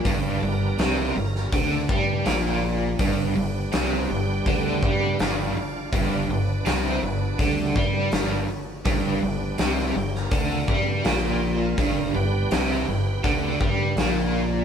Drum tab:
HH |o---o---o---o---|o---o---o---o---|o---o---o---o---|o---o---o---o---|
SD |----o--o----o---|----o-------o---|----o-------o---|----oo-o----o---|
BD |o-------o-o-----|o-------o-o-----|o-------o-o-----|o-------o-o-----|

HH |o---o---o---o---|
SD |----oo------o---|
BD |o-------o-o-----|